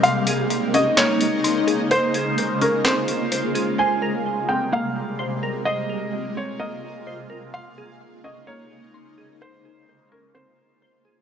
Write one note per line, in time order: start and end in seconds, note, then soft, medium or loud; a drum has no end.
0.03 3.75 C#3 medium
0.03 11.22 G#3 medium
0.03 3.75 A#3 medium
0.03 1.89 D#4 medium
0.03 0.70 F5 loud
0.03 1.43 C6 loud
0.03 closed hi-hat medium
0.27 1.66 G#4 medium
0.27 closed hi-hat medium
0.50 closed hi-hat medium
0.74 2.15 C#4 medium
0.74 0.96 D#5 medium
0.74 closed hi-hat medium
0.97 2.38 A#3 medium
0.97 1.87 C#5 medium
0.97 clap loud
0.97 closed hi-hat medium
1.21 closed hi-hat medium
1.44 2.85 C6 medium
1.44 closed hi-hat medium
1.67 2.14 G#4 medium
1.67 closed hi-hat medium
1.91 3.77 F4 medium
1.91 3.31 C5 loud
1.91 2.58 C5 loud
1.91 closed hi-hat medium
2.14 3.53 G#4 medium
2.14 closed hi-hat medium
2.38 closed hi-hat medium
2.61 3.79 C#4 medium
2.61 2.84 A#4 medium
2.61 closed hi-hat medium
2.85 3.79 C4 medium
2.85 3.75 C5 medium
2.85 clap loud
2.85 closed hi-hat medium
3.08 closed hi-hat medium
3.32 3.77 C5 medium
3.32 closed hi-hat medium
3.55 3.78 G#4 medium
3.55 closed hi-hat medium
3.78 7.50 C3 medium
3.78 5.64 G3 medium
3.78 7.50 A#3 medium
3.78 5.18 C5 loud
3.78 4.45 G#5 loud
4.02 5.42 A#4 medium
4.49 5.89 C4 medium
4.49 4.71 G5 medium
4.73 6.13 A#3 medium
4.73 5.62 F5 medium
5.19 5.65 C5 medium
5.43 5.88 A#4 medium
5.65 7.52 F4 medium
5.65 7.06 C5 loud
5.65 6.32 D#5 loud
5.90 7.29 A#4 medium
6.37 7.54 C4 medium
6.37 6.59 C#5 medium
6.60 7.54 A#3 medium
6.60 7.49 D#5 medium
7.07 7.54 C5 medium
7.30 7.53 A#4 medium
7.54 11.22 C#3 medium
7.54 11.22 A#3 medium
7.54 9.39 D#4 medium
7.54 8.20 F5 medium
7.54 8.93 C6 loud
7.78 9.17 G#4 medium
8.24 9.65 C#4 medium
8.24 8.46 D#5 medium
8.47 9.88 A#3 medium
8.47 9.37 C#5 medium
8.94 10.35 C6 medium
9.18 9.64 G#4 medium
9.41 11.22 F4 medium
9.41 10.81 C5 loud
9.41 10.08 C5 loud
9.65 11.04 G#4 medium
10.12 11.22 C#4 medium
10.12 10.34 A#4 medium
10.35 11.22 C4 medium
10.35 11.22 C5 medium
10.82 11.22 C5 loud
11.05 11.22 G#4 loud